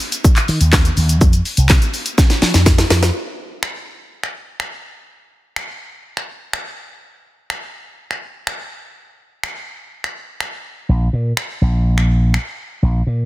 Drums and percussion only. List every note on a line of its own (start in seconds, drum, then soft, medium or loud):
0.00 open hi-hat medium
0.00 shaker medium
0.12 closed hi-hat medium
0.12 shaker medium
0.24 kick loud
0.24 shaker loud
0.36 clap medium
0.36 closed hi-hat medium
0.36 shaker medium
0.48 open hi-hat medium
0.48 shaker soft
0.61 closed hi-hat medium
0.61 shaker medium
0.73 kick loud
0.73 snare medium
0.73 clap loud
0.73 shaker medium
0.85 closed hi-hat medium
0.85 shaker medium
0.97 open hi-hat medium
0.97 shaker medium
1.09 closed hi-hat medium
1.09 shaker medium
1.21 kick loud
1.21 shaker medium
1.33 closed hi-hat medium
1.33 shaker medium
1.45 open hi-hat medium
1.45 shaker soft
1.57 closed hi-hat medium
1.57 shaker medium
1.69 kick loud
1.69 snare loud
1.69 clap loud
1.69 shaker medium
1.82 closed hi-hat medium
1.82 shaker medium
1.94 open hi-hat medium
1.94 shaker medium
2.06 closed hi-hat medium
2.06 shaker medium
2.18 kick loud
2.18 snare medium
2.18 shaker loud
2.30 snare medium
2.30 closed hi-hat medium
2.30 shaker medium
2.42 snare medium
2.42 open hi-hat medium
2.42 shaker soft
2.54 snare medium
2.54 closed hi-hat medium
2.54 shaker medium
2.66 kick loud
2.66 snare loud
2.66 shaker medium
2.78 snare medium
2.78 closed hi-hat medium
2.78 shaker medium
2.90 snare loud
2.90 open hi-hat medium
2.90 shaker medium
3.03 snare loud
3.03 closed hi-hat medium
3.03 shaker medium
3.63 finger snap loud
4.23 finger snap medium
4.60 finger snap loud
5.56 finger snap loud
6.17 finger snap medium
6.53 finger snap medium
7.50 finger snap loud
8.11 finger snap medium
8.47 finger snap loud
9.43 finger snap loud
10.04 finger snap medium
10.40 finger snap loud
11.37 finger snap loud
11.98 finger snap medium
12.34 finger snap loud